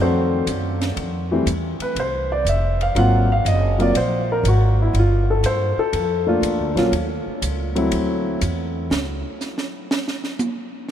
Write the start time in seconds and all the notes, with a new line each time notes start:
Already playing: F2
0.01 C4 F#4 A4 C5
0.47 F#2, hi-hat pedal, ride
0.81 snare, ride
0.97 F2, ride
1.31 E3 G3 A3 C4
1.46 E2, hi-hat pedal, ride
1.80 B4, muted upright bass stroke, ride
1.95 C2, ride
2.00 C5
2.32 D5
2.45 F1 E5, hi-hat pedal, ride
2.81 F5, ride
2.95 G#1 F#3 A#3 C4 F4 F#5, ride
3.32 F5
3.45 F#1 D#5, hi-hat pedal, ride
3.78 F#3 A#3 C4 F4 D5, ride
3.94 A#1 C5, ride
4.32 A#4
4.43 G#1, hi-hat pedal, ride
4.48 F#4
4.82 E4
4.93 G1, ride
4.99 F4
5.30 A4
5.43 G2 C5, hi-hat pedal, ride
5.77 A4, muted upright bass stroke
5.93 F2, ride
6.27 A3 A#3 D4 F4
6.42 E2, hi-hat pedal, ride
6.59 D2
6.75 A#1 F#3 A#3 C#4 F4, snare, ride
6.92 D#2, ride
7.26 muted upright bass stroke
7.42 C#2, hi-hat pedal, ride
7.75 F#3 A3 C4 E4, ride
7.92 D2, ride
8.41 E2, hi-hat pedal, ride
8.90 C#2, snare
9.41 snare, hi-hat pedal
9.58 snare
9.91 snare
10.08 snare
10.24 snare
10.39 hi-hat pedal, high tom